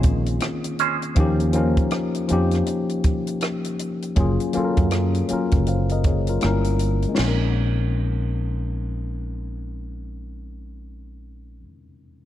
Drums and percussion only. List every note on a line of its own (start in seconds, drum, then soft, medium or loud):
0.03 kick medium
0.03 closed hi-hat medium
0.26 closed hi-hat soft
0.40 cross-stick medium
0.40 closed hi-hat medium
0.64 closed hi-hat soft
0.79 closed hi-hat medium
1.02 closed hi-hat soft
1.16 kick medium
1.16 closed hi-hat medium
1.40 closed hi-hat soft
1.53 closed hi-hat medium
1.77 kick medium
1.77 closed hi-hat soft
1.91 cross-stick medium
1.91 closed hi-hat medium
2.15 closed hi-hat soft
2.29 closed hi-hat medium
2.51 cross-stick soft
2.51 closed hi-hat soft
2.66 closed hi-hat medium
2.89 closed hi-hat soft
3.04 kick medium
3.04 closed hi-hat medium
3.27 closed hi-hat soft
3.41 cross-stick medium
3.41 closed hi-hat medium
3.65 closed hi-hat soft
3.79 closed hi-hat medium
4.02 closed hi-hat soft
4.16 kick medium
4.16 closed hi-hat medium
4.40 closed hi-hat soft
4.53 closed hi-hat medium
4.77 kick medium
4.77 closed hi-hat soft
4.91 cross-stick medium
4.91 closed hi-hat medium
5.15 closed hi-hat soft
5.29 closed hi-hat medium
5.51 kick medium
5.51 closed hi-hat soft
5.67 closed hi-hat medium
5.89 closed hi-hat soft
6.04 kick medium
6.04 closed hi-hat medium
6.27 closed hi-hat soft
6.41 cross-stick medium
6.41 closed hi-hat medium
6.64 closed hi-hat soft
6.79 closed hi-hat medium
7.02 closed hi-hat soft
7.17 snare medium
7.17 crash medium